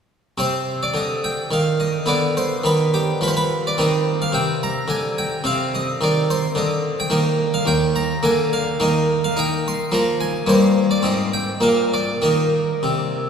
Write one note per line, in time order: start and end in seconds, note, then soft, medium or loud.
0.38 0.84 C3 medium
0.38 2.03 C4 soft
0.38 0.82 C5 medium
0.83 0.96 D5 medium
0.94 1.39 D3 medium
0.94 1.24 D#5 medium
1.24 1.47 G5 medium
1.51 1.96 D#3 medium
1.51 1.80 F5 medium
1.80 2.07 D#5 medium
2.06 2.52 D3 medium
2.06 3.73 B3 soft
2.06 2.32 D5 medium
2.37 2.65 C5 medium
2.64 3.09 D#3 medium
2.64 2.94 B4 medium
2.94 3.18 G4 medium
3.21 3.66 F3 medium
3.21 3.29 B4 medium
3.28 3.35 C5 medium
3.37 3.64 B4 medium
3.67 3.79 D5 medium
3.78 4.22 D#3 medium
3.78 5.41 C4 soft
3.78 4.14 D#5 medium
4.22 4.34 F5 medium
4.32 4.77 C3 medium
4.32 4.57 G5 medium
4.63 4.86 A#5 medium
4.88 5.33 D3 medium
4.88 5.17 G#5 medium
5.18 5.41 G5 medium
5.44 5.89 C3 medium
5.44 7.06 C4 soft
5.44 5.69 F5 medium
5.75 5.97 D#5 medium
6.01 6.45 D#3 medium
6.01 6.29 D5 medium
6.30 6.57 C5 medium
6.55 7.00 D3 medium
6.55 6.98 D#5 loud
7.00 7.12 G5 loud
7.10 7.55 D#3 medium
7.10 8.18 A#3 medium
7.10 7.47 D#5 loud
7.54 7.67 F5 loud
7.66 8.11 D#2 medium
7.66 7.95 G5 loud
7.96 8.23 A#5 loud
8.23 8.68 D3 medium
8.23 8.75 A#3 medium
8.23 8.52 G#5 loud
8.53 8.76 F5 loud
8.80 9.24 D#3 medium
8.80 9.87 A#3 medium
8.80 9.16 D#5 loud
9.24 9.37 F5 loud
9.37 9.81 D#4 medium
9.37 9.65 G5 loud
9.68 9.93 C6 loud
9.92 10.36 F3 medium
9.92 10.43 A#3 medium
9.92 10.16 A#5 loud
10.21 10.48 G#5 loud
10.47 10.92 G2 medium
10.47 10.99 A#3 medium
10.47 10.84 C5 loud
10.91 11.04 D5 medium
11.03 11.50 G#2 medium
11.03 11.57 C4 medium
11.03 11.29 D#5 medium
11.34 11.62 G5 medium
11.60 12.09 A#2 medium
11.60 12.17 A#3 soft
11.60 11.92 F5 medium
11.94 12.23 D5 medium
12.22 12.70 D#3 medium
12.22 13.29 A#3 soft
12.22 13.29 D#5 medium
12.83 13.29 C3 medium